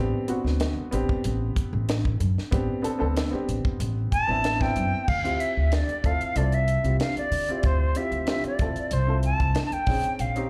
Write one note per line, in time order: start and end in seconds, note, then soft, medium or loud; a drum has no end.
0.00 0.11 A1 medium
0.00 0.26 B3 medium
0.00 0.26 C4 medium
0.00 0.26 D4 medium
0.00 0.27 G4 loud
0.28 0.88 B3 medium
0.28 0.88 C4 medium
0.28 0.89 D4 medium
0.28 0.89 F#4 medium
0.28 muted upright bass stroke soft
0.28 closed hi-hat medium
0.44 0.73 D2 medium
0.44 snare soft
0.60 snare loud
0.60 closed hi-hat medium
0.77 muted upright bass stroke soft
0.91 1.07 A1 medium
0.91 2.11 B3 medium
0.91 2.12 C4 medium
0.91 2.12 D4 medium
0.91 2.12 G4 loud
0.91 closed hi-hat medium
1.09 muted upright bass stroke soft
1.09 kick medium
1.24 1.52 A1 medium
1.24 closed hi-hat medium
1.56 muted upright bass stroke soft
1.56 kick medium
1.56 closed hi-hat medium
1.73 2.14 A1 medium
1.89 snare loud
1.89 closed hi-hat medium
2.05 kick medium
2.20 2.35 F#2 medium
2.20 closed hi-hat medium
2.37 muted upright bass stroke soft
2.37 snare soft
2.51 2.67 A1 loud
2.51 2.81 B3 medium
2.51 2.81 C4 medium
2.51 2.82 D4 medium
2.51 2.82 G4 medium
2.51 kick loud
2.51 closed hi-hat medium
2.82 2.97 B3 medium
2.82 2.98 C4 medium
2.82 2.98 D4 medium
2.82 2.99 A4 medium
2.82 muted upright bass stroke soft
2.82 closed hi-hat medium
2.99 3.29 D2 medium
2.99 3.29 B3 medium
2.99 3.30 C4 medium
2.99 3.30 D4 medium
2.99 3.30 A4 loud
3.17 snare loud
3.17 closed hi-hat medium
3.31 4.20 B3 medium
3.31 4.21 C4 medium
3.31 4.21 D4 medium
3.31 4.22 G4 medium
3.31 muted upright bass stroke soft
3.48 3.63 A1 medium
3.48 closed hi-hat medium
3.65 muted upright bass stroke soft
3.65 kick medium
3.80 4.08 A1 medium
3.80 closed hi-hat medium
4.12 4.63 A5 loud
4.12 muted upright bass stroke soft
4.12 kick medium
4.12 closed hi-hat medium
4.27 4.69 A1 medium
4.27 4.57 B3 medium
4.27 4.58 C4 medium
4.27 4.58 D4 medium
4.27 4.58 E4 medium
4.44 snare loud
4.44 closed hi-hat medium
4.59 5.04 B3 medium
4.59 5.04 C4 medium
4.59 5.04 D4 medium
4.59 5.05 E4 medium
4.59 5.10 G5 loud
4.59 kick medium
4.59 snare soft
4.76 4.90 F#2 medium
4.76 closed hi-hat medium
4.93 muted upright bass stroke soft
5.08 5.36 D2 medium
5.08 5.42 F5 medium
5.08 kick loud
5.08 crash medium
5.24 5.98 C4 medium
5.24 5.98 E4 medium
5.24 5.98 F4 medium
5.24 5.99 G4 medium
5.24 closed hi-hat soft
5.40 5.76 E5 medium
5.40 closed hi-hat medium
5.57 5.84 D2 medium
5.72 6.07 D5 medium
5.72 snare medium
5.72 closed hi-hat medium
5.89 muted upright bass stroke soft
5.89 closed hi-hat soft
6.03 6.18 D2 medium
6.03 6.33 C4 medium
6.03 6.34 E4 medium
6.03 6.34 F4 medium
6.03 6.34 A4 medium
6.03 6.39 F5 medium
6.03 kick medium
6.03 closed hi-hat medium
6.21 muted upright bass stroke soft
6.21 closed hi-hat soft
6.35 6.78 C2 medium
6.35 6.80 C4 medium
6.35 6.81 E4 medium
6.35 6.81 F4 medium
6.35 6.82 A4 medium
6.35 6.56 D5 medium
6.35 closed hi-hat medium
6.52 7.00 E5 medium
6.52 closed hi-hat soft
6.68 closed hi-hat medium
6.83 6.97 C2 medium
6.83 7.43 C4 medium
6.83 7.43 E4 soft
6.83 7.44 F4 medium
6.83 7.44 G4 medium
6.83 closed hi-hat soft
7.00 7.16 F5 medium
7.00 snare medium
7.00 closed hi-hat medium
7.16 7.67 D5 medium
7.16 muted upright bass stroke soft
7.16 closed hi-hat soft
7.31 7.46 D3 medium
7.31 open hi-hat medium
7.48 7.92 C4 medium
7.48 7.93 E4 medium
7.48 7.93 F4 medium
7.48 7.93 G4 medium
7.48 muted upright bass stroke soft
7.48 closed hi-hat soft
7.63 7.91 D2 medium
7.63 7.98 C5 medium
7.63 kick loud
7.63 closed hi-hat medium
7.95 8.25 C4 medium
7.95 8.25 E4 medium
7.95 8.26 F4 medium
7.95 8.26 G4 medium
7.95 8.28 E5 medium
7.95 closed hi-hat medium
8.11 8.39 D2 medium
8.11 closed hi-hat soft
8.27 8.57 C4 medium
8.27 8.57 E4 medium
8.27 8.58 F4 medium
8.27 8.58 G4 medium
8.27 8.44 E5 medium
8.27 snare medium
8.27 closed hi-hat medium
8.44 8.95 D5 medium
8.44 muted upright bass stroke soft
8.44 closed hi-hat soft
8.59 8.74 D2 medium
8.59 9.04 C4 medium
8.59 9.05 E4 medium
8.59 9.05 F4 medium
8.59 9.06 A4 medium
8.59 kick medium
8.59 closed hi-hat medium
8.76 muted upright bass stroke soft
8.76 closed hi-hat soft
8.91 9.33 C2 medium
8.91 9.24 C5 medium
8.91 closed hi-hat medium
9.07 9.86 C4 medium
9.07 9.87 E4 medium
9.07 9.88 F4 medium
9.07 9.88 A4 medium
9.23 9.62 A5 medium
9.23 closed hi-hat medium
9.40 9.53 C2 medium
9.40 kick medium
9.40 closed hi-hat soft
9.55 snare loud
9.55 closed hi-hat medium
9.66 9.74 A5 medium
9.72 10.22 G5 medium
9.72 muted upright bass stroke soft
9.72 closed hi-hat soft
9.87 10.01 A#1 medium
9.87 10.33 C4 medium
9.87 10.33 C#4 medium
9.87 10.33 D#4 medium
9.87 10.33 G#4 medium
9.87 kick medium
9.87 open hi-hat medium
10.04 muted upright bass stroke soft
10.04 closed hi-hat soft
10.19 10.47 A#1 medium
10.19 10.50 F5 medium
10.19 closed hi-hat medium
10.35 10.50 C4 medium
10.35 10.50 C#4 medium
10.35 10.50 D#4 medium
10.35 10.50 G4 medium
10.35 closed hi-hat soft